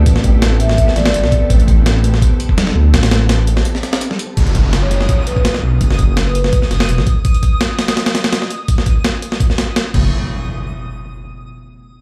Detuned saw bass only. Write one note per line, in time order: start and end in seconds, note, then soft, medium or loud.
0.06 0.77 A1 loud
0.96 1.12 A1 medium
1.14 1.25 G1 medium
1.23 1.31 C2 medium
1.50 2.20 A1 loud
2.75 2.92 D2 loud
2.94 3.64 A1 loud
4.37 5.08 F#1 loud
5.63 5.79 B1 loud
5.81 6.51 F#1 loud
6.71 6.87 F#1 medium
6.89 7.00 E1 medium
6.99 7.06 A1 medium
9.94 10.11 F#1 loud